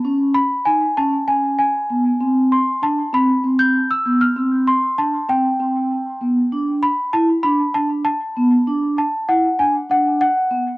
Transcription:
<<
  \new Staff \with { instrumentName = "Celesta" } { \time 7/8 \key ces \lydian \tempo 4 = 98 r8 ces'''8 aes''8 a''8 aes''8 aes''8. r16 | r8 c'''8 a''8 b''8 r16 g'''8 e'''8 f'''16~ | f'''16 r16 c'''8 a''8 g''4. r8 | r8 ces'''8 a''8 ces'''8 a''8 a''8. r16 |
r8 a''8 ges''8 aes''8 ges''8 ges''8. r16 | }
  \new Staff \with { instrumentName = "Vibraphone" } { \time 7/8 \key ces \lydian des'4 ees'8 des'8 des'4 ces'8 | c'4 d'8 c'8 c'4 b8 | c'4 d'8 c'8 c'4 b8 | d'4 fes'8 d'8 d'4 ces'8 |
d'4 fes'8 d'8 d'4 ces'8 | }
>>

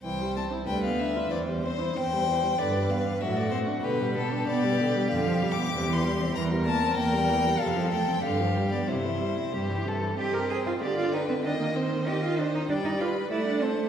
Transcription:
<<
  \new Staff \with { instrumentName = "Violin" } { \time 2/4 \key c \major \tempo 4 = 96 g''8 a''8 g''16 f''16 e''8 | d''8 c''8 g''4 | d''8 f''8 e''16 d''16 c''8 | b'8 a'8 d''4 |
\tuplet 3/2 { f''4 d'''8~ d'''8 c'''4 } | bes''8 a''8 g''4 | f''8 g''8 f''8. d''16 | c''4. r8 |
\key c \minor ees''8 g''8 f''8 g''8 | g''8 ees''8 g''8 ees''8 | g''8 b''8 fis''8 a''8 | }
  \new Staff \with { instrumentName = "Violin" } { \time 2/4 \key c \major c''4 b'4 | c''2 | b'4 fis'4 | g'2~ |
g'2 | bes'2 | a'4 g'4 | e'4 g'8 a'8 |
\key c \minor g'8 c''8 d''8 b'8 | ees''8 c''8 ees''8 c''8 | d''8 b'8 d''8 c''8 | }
  \new Staff \with { instrumentName = "Cello" } { \time 2/4 \key c \major c,4 d,4 | e,4 e,4 | g,4 a,4 | b,4 b,4 |
f,4 e,4 | e,4 e,4 | f,4 g,4 | c4 g,4 |
\key c \minor g'16 bes'16 aes'16 f'16 g'16 f'16 ees'16 c'16 | d'16 bes16 c'8 g'16 f'16 d'16 ees'16 | d'16 ees'16 f'8 e'16 d'16 c'16 a16 | }
  \new Staff \with { instrumentName = "Viola" } { \clef bass \time 2/4 \key c \major e16 g16 c'16 e'16 g16 b16 d'16 f'16 | e16 g16 c'16 e'16 c'16 g16 e16 g16 | d16 g16 b16 d'16 fis16 a16 c'16 d'16 | d16 g16 b16 d'16 b16 g16 d16 g16 |
d16 f16 g16 b16 c16 e16 g16 c'16 | e16 g16 bes16 c'16 bes16 g16 e16 g16 | c16 f16 a16 c'16 d16 f16 g16 b16 | c16 e16 g16 c'16 g16 e16 c16 e16 |
\key c \minor c'4 d4 | ees2 | g4 a4 | }
>>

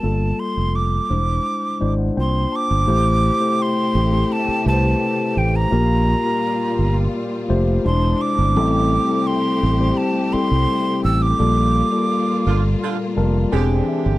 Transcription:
<<
  \new Staff \with { instrumentName = "Flute" } { \time 4/4 \key a \phrygian \tempo 4 = 85 a''8 c'''8 d'''2 c'''8 d'''8~ | d'''4 c'''4 a''8 a''4 g''16 bes''16~ | bes''4.~ bes''16 r4 r16 bis''8 d'''8~ | d'''4 c'''4 a''8 c'''4 e'''16 d'''16~ |
d'''4.~ d'''16 r2 r16 | }
  \new Staff \with { instrumentName = "Tine electric piano" } { \time 4/4 \key a \phrygian << { r2 r8 d''16 fis''16 g''8 a''8 | r1 | r1 | r1 |
r2 r8 a''8 gis''8 e''8 | } \\ { <g bes f' a'>4 r8 <g gis d' e' c''>8. r16 <gis d' e' c''>8 <bes d' f' c''>8. r16 | <a e' g' c''>8 r16 <a e' g' c''>8 r8 <a e' g' a'>8 r16 <a e' g' b' c''>4 r8 | <bes f' g' bes'>8 r16 <bes f' g' bes'>4 r8. <a f' g' c''>8 <gis d' e' bis'>8. r16 | <g c' e' a'>8 r16 <g c' e' a'>8 r8 <g c' e' c''>8 r16 <g c' e' a'>4 r8 |
<g bes f' a'>8 r16 <g bes f' a'>4 r8. <g bes f' bes'>8 <e bis d' gis'>8. r16 | } >> }
  \new Staff \with { instrumentName = "Horn section" } { \time 4/4 \key a \phrygian r1 | r1 | r1 | r1 |
r4. <d bes f'>16 r16 <d bes f'>16 r8. <d bis g'>4 | }
  \new Staff \with { instrumentName = "String section" } { \time 4/4 \key a \phrygian << { r1 | <a g'>1 | <g f'>2. <gis d'>4 | <a g'>1 |
<bes f'>2. <gis d'>4 | } \\ { r1 | c1 | bes,2. bis,4~ | bis,1 |
bes,2. bis,4 | } >> }
  \new Staff \with { instrumentName = "Fingered electric bass" } { \clef bass \time 4/4 \key a \phrygian g,,8 r16 f,,8. e,,8 r8 gis,,8 c,8 r16 g,,16 | a,,8. r8. a,,8 r8 c,8 r8 a,,8 | bes,,8. r8. g,,8 r8 f,,8 e,,8 r16 g,,16 | a,,8. r8. a,,8 r8. c,16 r8 a,,8 |
bes,,8. r8. g,,8 r8 f,,8 e,,8 r16 g,,16 | }
>>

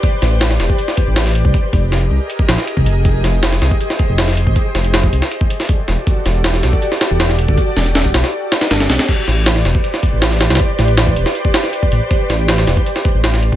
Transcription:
<<
  \new Staff \with { instrumentName = "Ambient pad" } { \time 4/4 \key a \dorian \tempo 4 = 159 << { <g' b' d''>1 | <aes' ees''>1~ | <aes' ees''>1~ | <aes' ees''>2 <fis' g' d''>2~ |
<fis' g' d''>1~ | <fis' g' d''>1 | <g' b' d''>1~ | <g' b' d''>1~ |
<g' b' d''>1 | } \\ { c''1 | bes'1 | c''1~ | c''2 a'2~ |
a'1~ | a'1 | c''1~ | c''1~ |
c''1 | } >> }
  \new Staff \with { instrumentName = "Detuned saw bass" } { \clef bass \time 4/4 \key a \dorian r8 a,,4 e,,16 r4 a,,4 c,16 | r8 f,,4 c,16 r8. bes,,16 r8 c,16 f,,8~ | f,,8 f,,4 c,16 r4 f,,4 aes,,16 | r8 f,,4 c,16 r4. r16 e,,16 r16 |
r8 e,,4 b,,16 r4 e,,4 g,,16 | r8 e,,4 b,,16 r4 r16 g,,8 b,,16 r16 | r8 a,,4 e,,16 r4 a,,4 c,16 | r8 a,,4 e,,16 r4. r16 a,,16 r16 |
r8 a,,4 e,,16 r4 a,,4 c,16 | }
  \new DrumStaff \with { instrumentName = "Drums" } \drummode { \time 4/4 <hh bd>8 <hh sn>8 <hh sn>16 sn16 <hh sn>16 bd16 hh16 sn16 <hh bd>8 <hh sn>16 sn16 hh16 bd16 | <hh bd>8 <hh bd>8 <hh sn>4 hh16 bd16 <hh sn>16 sn16 hh16 bd16 hh8 | <hh bd>8 <hh sn>8 <hh sn>16 sn16 <hh sn>16 bd16 hh16 sn16 <hh bd>8 <hh sn>16 sn16 hh16 bd16 | <hh bd>8 <hh sn>16 hh16 <hh sn>16 bd16 hh16 sn16 hh16 bd16 hh16 sn16 <hh bd>8 <hh sn>8 |
<hh bd>8 <hh sn>8 <hh sn>16 sn16 <hh sn>16 bd16 hh16 sn16 <hh sn>8 <hh sn>16 sn16 hh16 bd16 | <hh bd>8 <hh sn>16 hh16 <hh sn>16 bd16 <hh sn>16 sn16 r8 <hh sn>16 <hh sn>16 <hh sn>16 <hh sn>16 <hh sn>16 <hh sn>16 | <cymc hh bd>8 <hh sn>8 <hh sn>16 sn16 <hh sn>16 bd16 hh16 sn16 <hh bd>8 <hh sn>16 sn16 <hh sn>16 <hh sn>32 <hh sn>32 | <hh bd>8 <hh sn>16 hh16 <hh sn>16 bd16 hh16 sn16 hh16 bd16 <hh sn>16 sn16 hh16 bd16 hh8 |
<hh bd>8 <hh sn>8 <hh sn>16 sn16 <hh sn>16 bd16 hh16 sn16 <hh bd>8 <hh sn>16 sn16 hh16 bd16 | }
>>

